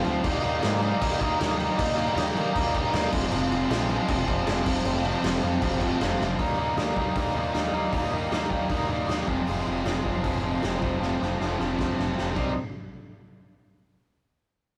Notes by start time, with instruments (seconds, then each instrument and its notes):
0.04 picked electric bass D2, overdriven electric guitar F3 A3 C4 F4, crash
0.24 picked electric bass D#2, overdriven electric guitar D#3 G3 A#3 D#4, kick, crash
0.42 picked electric bass D#2, overdriven electric guitar D#3 G3 A#3 D#4, crash
0.61 picked electric bass G#2, overdriven electric guitar D#3 G3 A#3 D#4, snare, crash
0.81 overdriven electric guitar D#3 G3 A#3 D#4, crash
1.00 picked electric bass D#2, overdriven electric guitar D#3 G3 A#3 D#4, kick, crash
1.19 picked electric bass D#2, overdriven electric guitar D#3 G3 A#3 D#4, kick, crash
1.38 picked electric bass D#2, overdriven electric guitar D#3 G3 A#3 D#4, snare, crash
1.57 overdriven electric guitar D#3 G3 A#3 D#4, crash
1.77 picked electric bass D#2, overdriven electric guitar D#3 G3 A#3 D#4, kick, crash
1.95 overdriven electric guitar D#3 G3 A#3 D#4, crash
2.15 picked electric bass D#2, overdriven electric guitar D#3 G3 A#3 D#4, snare, crash
2.35 picked electric bass D#3, overdriven electric guitar D#3 G3 A#3 D#4, crash
2.54 picked electric bass D#2, overdriven electric guitar D#3 G3 A#3 D#4, kick, crash
2.74 overdriven electric guitar D#3 G3 A#3 D#4, kick, crash
2.93 picked electric bass D#2, overdriven electric guitar D#3 G3 A#3 D#4, snare, crash
3.12 picked electric bass F1, overdriven electric guitar F2 C3 F3 G#3 C4, kick, crash
3.31 picked electric bass F1, overdriven electric guitar F2 C3 F3 G#3 C4, crash
3.50 picked electric bass F1, overdriven electric guitar F2 C3 F3 G#3 C4, crash
3.69 picked electric bass A#1, overdriven electric guitar F2 C3 F3 G#3 C4, snare, crash
3.89 overdriven electric guitar F2 C3 F3 G#3 C4, crash
4.08 picked electric bass F1, overdriven electric guitar F2 C3 F3 G#3 C4, kick, crash
4.27 picked electric bass F1, overdriven electric guitar F2 C3 F3 G#3 C4, kick, crash
4.46 picked electric bass F1, overdriven electric guitar F2 C3 F3 G#3 C4, snare, crash
4.66 picked electric bass F1, overdriven electric guitar F2 C3 F3 A3 C4, kick, crash
4.84 picked electric bass F1, overdriven electric guitar F2 C3 F3 A3 C4, crash
5.03 overdriven electric guitar F2 C3 F3 A3 C4, crash
5.23 picked electric bass F1, overdriven electric guitar F2 C3 F3 A3 C4, snare, crash
5.42 overdriven electric guitar F2 C3 F3 A3 C4, picked electric bass F2, crash
5.61 picked electric bass F1, overdriven electric guitar F2 C3 F3 A3 C4, kick, crash
5.79 overdriven electric guitar F2 C3 F3 A3 C4, kick, crash
6.00 picked electric bass F1, overdriven electric guitar F2 C3 F3 A3 C4, snare, crash
6.19 picked electric bass F1, overdriven electric guitar F2 C3 F3 A3 C4, snare
6.38 picked electric bass D#2, overdriven electric guitar D#3 G3 A#3 D#4, kick, open hi-hat
6.57 picked electric bass D#2, overdriven electric guitar D#3 G3 A#3 D#4
6.76 picked electric bass D#2, overdriven electric guitar D#3 G3 A#3 D#4, snare, open hi-hat
6.96 picked electric bass D#2, overdriven electric guitar D#3 G3 A#3 D#4, kick
7.16 picked electric bass D#2, overdriven electric guitar D#3 G3 A#3 D#4, kick, open hi-hat
7.35 picked electric bass D#2, overdriven electric guitar D#3 G3 A#3 D#4
7.53 picked electric bass D#2, overdriven electric guitar D#3 G3 A#3 D#4, snare, open hi-hat
7.72 picked electric bass D#2, overdriven electric guitar D#3 G3 A#3 D#4
7.92 picked electric bass D#2, overdriven electric guitar D#3 G3 A#3 D#4, kick, open hi-hat
8.11 picked electric bass D#2, overdriven electric guitar D#3 G3 A#3 D#4
8.31 picked electric bass D#2, overdriven electric guitar D#3 G3 A#3 D#4, snare, open hi-hat
8.50 picked electric bass D#2, overdriven electric guitar D#3 G3 A#3 D#4, kick
8.68 picked electric bass D#2, overdriven electric guitar D#3 G3 A#3 D#4, kick, open hi-hat
8.88 picked electric bass D#2, overdriven electric guitar D#3 G3 A#3 D#4
9.07 picked electric bass D#2, overdriven electric guitar D#3 G3 A#3 D#4, snare, open hi-hat
9.26 picked electric bass F1, overdriven electric guitar F2 C3 F3 G#3 C4, kick
9.45 picked electric bass F1, overdriven electric guitar F2 C3 F3 G#3 C4, open hi-hat
9.65 picked electric bass F1, overdriven electric guitar F2 C3 F3 G#3 C4
9.84 picked electric bass F1, overdriven electric guitar F2 C3 F3 G#3 C4, snare, open hi-hat
10.03 picked electric bass F1, overdriven electric guitar F2 C3 F3 G#3 C4, kick
10.22 picked electric bass F1, overdriven electric guitar F2 C3 F3 G#3 C4, kick, open hi-hat
10.42 picked electric bass F1, overdriven electric guitar F2 C3 F3 G#3 C4
10.61 picked electric bass F1, overdriven electric guitar F2 C3 F3 G#3 C4, snare, open hi-hat
10.80 picked electric bass F1, overdriven electric guitar F2 C3 F3 A3 C4, kick
10.98 picked electric bass F1, overdriven electric guitar F2 C3 F3 A3 C4
11.02 snare
11.18 picked electric bass F1, overdriven electric guitar F2 C3 F3 A3 C4, snare
11.39 picked electric bass F1, overdriven electric guitar F2 C3 F3 A3 C4, snare
11.58 picked electric bass F1, overdriven electric guitar F2 C3 F3 A3 C4, snare
11.76 picked electric bass F1, overdriven electric guitar F2 C3 F3 A3 C4, kick, snare
11.96 picked electric bass F1, overdriven electric guitar F2 C3 F3 A3 C4, snare
12.13 overdriven electric guitar F2 C3 F3 A3 C4
12.18 picked electric bass F1, snare
12.34 picked electric bass C2, overdriven electric guitar C3 G3 C4 D#4, kick, crash